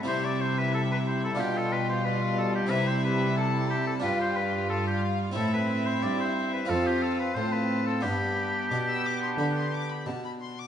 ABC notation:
X:1
M:4/4
L:1/16
Q:1/4=90
K:Gmix
V:1 name="Violin section"
e8 g4 d4 | e4 a4 g4 f4 | e8 f4 a4 | b4 d' e' d' c' b c' d' b a b c' d' |]
V:2 name="Oboe"
c d c B A B c A G A B c B2 A G | B c B2 A2 G A B c B2 A G z2 | A B2 c d c2 B A G A B c B2 A | G12- G2 z2 |]
V:3 name="Violin section"
E8 F8 | E8 F8 | E8 F4 F4 | D12- D2 z2 |]
V:4 name="Viola section"
G,16- | G,16 | C8 C4 C4 | B,12- B,2 z2 |]
V:5 name="Harpsichord"
[CE]8 [DF]8 | [CE]8 [DF]8 | [CE]8 [CF]8 | [B,D]16 |]
V:6 name="Harpsichord" clef=bass
C,8 B,,8 | C,8 G,,8 | A,,4 G,,4 F,,4 A,,4 | G,,4 B,,4 D,4 B,,4 |]
V:7 name="Cello section" clef=bass
C,8 B,,8 | C,8 G,,8 | A,,4 G,,4 F,,4 A,,4 | G,,4 B,,4 D,4 B,,4 |]